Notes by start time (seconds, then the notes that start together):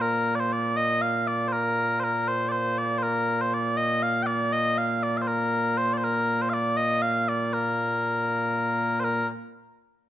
Already playing: A#2 A#3
0.02 A#4
0.35 D5
0.40 C5
0.52 D5
0.77 D#5
1.01 F5
1.27 D5
1.48 C5
1.53 A#4
2.00 A#4 C5
2.28 C5
2.49 C5 D5
2.78 D5
2.98 C5
3.03 A#4
3.41 C5
3.54 D5
3.77 D#5
4.02 F5
4.23 D5 G5
4.53 D#5
4.78 F5
5.03 D5
5.17 F5
5.22 C5
5.28 A#4
5.78 C5
5.93 D5
5.98 C5
6.04 A#4
6.42 C5
6.49 F5
6.53 D5
6.77 D#5
7.02 F5
7.28 D5
7.53 A#4
9.00 C5
9.04 A#4